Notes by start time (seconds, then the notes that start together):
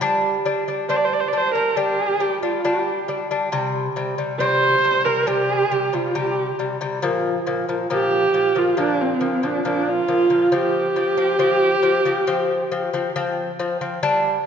0.01 G3 D4
0.45 G3 D4
0.68 G3 D4
0.89 G3 D4 C5
0.96 D5
1.04 C5
1.13 D5
1.20 C5
1.28 D5
1.33 G3 D4
1.38 C5
1.55 G3 D4 A#4
1.77 G3 D4 G4
2.20 G3 D4
2.43 G3 D4 F4
2.64 G3 D4 G4
3.08 G3 D4
3.31 G3 D4
3.52 C3 G3
3.96 C3 G3
4.18 C3 G3
4.40 C3 G3 C5
4.84 C3 G3
5.05 C3 G3 A#4
5.27 C3 G3 G4
5.71 C3 G3
5.93 C3 G3 F4
6.14 C3 G3 G4
6.59 C3 G3
6.81 C3 G3
7.02 A#2 F3
7.46 A#2 F3
7.69 A#2 F3
7.90 A#2 F3 G4
8.34 A#2 F3
8.55 A#2 F3 F4
8.77 A#2 F3 D4
9.01 C4
9.21 A#2 F3
9.43 A#2 F3 D4
9.65 A#2 F3 D4
9.89 F4
10.08 A#2 F3
10.30 A#2 F3
10.52 F3 C4 G4
10.96 F3 C4
11.17 F3 C4
11.39 F3 C4
11.83 F3 C4
12.05 F3 C4
12.27 F3 C4
12.71 F3 C4
12.93 F3 C4
13.16 F3 C4
13.59 F3 C4
13.81 F3 C4
14.03 G3 D4